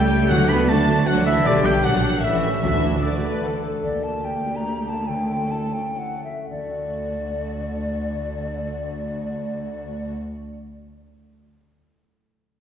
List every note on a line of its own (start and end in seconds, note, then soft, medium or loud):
0.00 0.29 C#2 medium
0.00 0.32 C#3 medium
0.00 0.31 G3 loud
0.00 0.32 G3 medium
0.00 0.31 A3 medium
0.00 0.32 C#4 medium
0.00 0.20 E4 medium
0.00 0.31 G4 medium
0.00 0.32 G4 medium
0.00 0.10 A4 medium
0.00 0.33 E5 medium
0.00 0.30 G5 medium
0.00 0.30 G5 loud
0.00 0.87 A5 medium
0.11 0.58 A4 medium
0.21 0.32 E4 medium
0.29 1.46 D2 loud
0.29 1.47 D3 loud
0.29 0.84 D3 medium
0.29 0.50 F#3 loud
0.29 0.69 D4 medium
0.29 0.69 F#4 medium
0.29 0.50 F#5 loud
0.29 0.49 F#5 loud
0.29 0.38 F#5 loud
0.40 1.47 F#3 medium
0.49 0.69 B3 loud
0.49 1.73 D4 medium
0.49 0.57 B5 medium
0.49 0.70 B5 loud
0.49 0.58 B5 loud
0.59 1.34 A4 medium
0.69 1.08 A3 medium
0.69 1.07 D4 medium
0.69 1.25 F#4 medium
0.69 1.07 F#4 medium
0.69 1.06 A5 medium
0.69 1.09 A5 loud
0.69 1.07 A5 medium
0.89 1.06 A5 medium
0.98 1.47 F#5 medium
1.06 1.26 F#3 loud
1.06 1.45 D4 medium
1.06 1.45 F#4 medium
1.06 1.14 F#5 loud
1.06 1.26 F#5 loud
1.06 1.47 A5 medium
1.17 2.25 D5 medium
1.26 1.45 E3 loud
1.26 1.47 F#4 medium
1.26 1.45 E5 loud
1.26 1.34 E5 loud
1.26 1.48 E5 loud
1.36 1.47 A4 medium
1.45 1.84 B1 loud
1.45 1.86 B2 loud
1.45 1.65 D3 loud
1.45 1.84 D4 medium
1.45 1.84 G4 medium
1.45 1.64 D5 loud
1.45 1.54 D5 loud
1.45 1.67 D5 loud
1.54 1.86 B3 medium
1.64 2.02 G3 medium
1.64 1.85 G3 loud
1.64 1.84 G5 loud
1.64 1.73 G5 loud
1.64 1.86 G5 loud
1.74 2.12 D4 medium
1.83 2.23 A#1 medium
1.83 2.25 A#2 medium
1.83 2.23 F#3 loud
1.83 2.23 D4 medium
1.83 2.23 G4 medium
1.83 2.22 F#5 loud
1.83 2.24 F#5 loud
1.83 2.26 F#5 loud
1.94 2.25 A#3 medium
2.03 2.65 G3 medium
2.13 2.25 D4 medium
2.22 2.63 A1 medium
2.22 2.65 A2 medium
2.22 2.62 E3 medium
2.22 2.63 C#4 medium
2.22 2.63 G4 medium
2.22 2.61 E5 medium
2.22 2.62 E5 loud
2.33 2.65 E3 medium
2.43 2.72 A3 medium
2.53 2.65 C#4 medium
2.62 3.63 D2 medium
2.62 3.19 D3 loud
2.62 3.82 D3 medium
2.62 3.03 E3 loud
2.62 3.03 D4 medium
2.62 3.02 F#4 medium
2.62 3.02 E5 loud
2.62 3.02 E5 medium
2.62 3.04 E5 loud
2.73 3.85 A3 medium
2.83 4.44 D4 medium
2.93 3.72 F#4 medium
3.02 3.62 D3 medium
3.02 3.22 F#4 medium
3.02 3.62 A4 medium
3.02 3.62 D5 medium
3.02 3.63 D5 medium
3.13 3.52 D5 medium
3.23 3.44 B4 medium
3.23 3.42 F#5 medium
3.34 3.85 A5 medium
3.44 3.84 A4 medium
3.44 3.85 F#5 medium
3.54 5.10 D5 medium
3.63 3.85 A4 medium
3.73 3.85 F#4 medium
3.83 4.22 D2 soft
3.83 6.22 D2 medium
3.83 5.07 D3 medium
3.83 5.05 A#3 medium
3.83 5.04 D4 soft
3.83 5.04 G4 soft
3.83 4.05 D5 medium
4.03 4.86 A#3 soft
4.03 4.26 A5 medium
4.25 4.65 G4 soft
4.25 4.58 G5 medium
4.45 5.10 D4 soft
4.56 4.86 A#5 medium
4.66 6.52 G4 soft
4.87 5.10 A#3 soft
4.87 5.09 A5 medium
5.07 6.49 D3 soft
5.07 6.21 A3 soft
5.07 6.22 C#4 soft
5.07 6.21 A4 soft
5.07 5.29 G5 medium
5.29 6.24 A3 soft
5.29 5.53 G5 medium
5.51 5.98 E4 soft
5.51 5.75 A5 medium
5.74 6.52 C#4 soft
5.74 6.00 G5 medium
5.98 6.52 E4 soft
5.98 6.24 F#5 medium
6.24 6.56 A3 soft
6.24 6.50 E5 soft
6.50 10.15 D2 soft
6.50 10.16 D2 soft
6.50 10.85 D3 soft
6.50 10.16 A3 soft
6.50 10.15 D4 soft
6.50 10.15 F#4 soft
6.50 10.15 D5 soft
6.57 10.89 A3 soft
6.65 10.92 D4 soft
6.72 10.96 F#4 soft
6.79 10.99 D5 soft